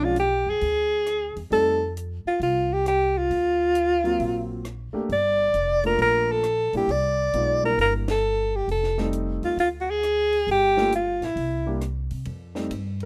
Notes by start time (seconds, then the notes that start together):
Already playing: B1
0.01 F3 G#3 C#4 D4 F4
0.16 G4, closed hi-hat
0.46 F#2 G#4
0.61 D2, open hi-hat
1.06 cross-stick, closed hi-hat
1.36 E2, open hi-hat
1.50 F2 G3 A3 C4 D#4 A4, open hi-hat
1.97 closed hi-hat
2.25 F4, muted upright bass stroke
2.40 C2 F4, open hi-hat
2.73 G4
2.86 G4, cross-stick, closed hi-hat
3.18 F4
3.30 D2, open hi-hat
3.75 closed hi-hat
4.04 F#3 A#3 C4 F4, open hi-hat
4.19 A#1, open hi-hat
4.65 cross-stick, closed hi-hat
4.93 A3 A#3 D4 G4, muted upright bass stroke
5.09 G1 D5, open hi-hat
5.54 F1, closed hi-hat
5.83 A3 A#3 D4 F4 A#4, open hi-hat
5.98 A#1 A#4, open hi-hat
6.32 A4
6.43 cross-stick, closed hi-hat
6.73 A#1 G3 A#3 D4 E4, open hi-hat
6.77 G4
6.87 C2, open hi-hat
6.91 D5
7.33 B1 G#3 B3 D#4 F4, closed hi-hat
7.63 G3 A#3 D4 E4 A#4
7.77 G1 A#4, open hi-hat
8.08 A4, snare, ride
8.56 G4
8.68 F1 A4, open hi-hat
8.83 snare
8.98 G3 A3 C4 D#4, snare
9.13 closed hi-hat
9.42 D#2 F4, open hi-hat
9.57 D2 F4, open hi-hat
9.80 F#4
9.90 G#4
10.03 cross-stick, closed hi-hat
10.33 open hi-hat
10.47 G1, open hi-hat
10.51 G4
10.77 A3 A#3 D4 F4, snare
10.92 F4, closed hi-hat
11.21 A#1 E4, snare, open hi-hat
11.36 C2, open hi-hat
11.66 G3 A#3 D4 G4
11.81 cross-stick, closed hi-hat
12.11 C3, open hi-hat
12.25 F2, ride
12.55 G3 A3 C4 D#4, snare
12.70 G2, hi-hat pedal, ride
13.00 ride